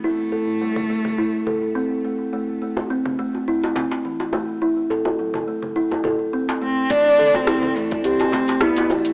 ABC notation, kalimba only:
X:1
M:4/4
L:1/16
Q:"Swing 16ths" 1/4=105
K:Am
V:1 name="Kalimba"
E2 A2 G,2 A, z E2 A2 C z A, z | A,2 A,2 C z A,2 E2 C2 E,2 A,2 | E2 A2 ^F,2 A, z E2 A2 C z A, z | A, z A2 E z E,2 G z A, z E z E,2 |]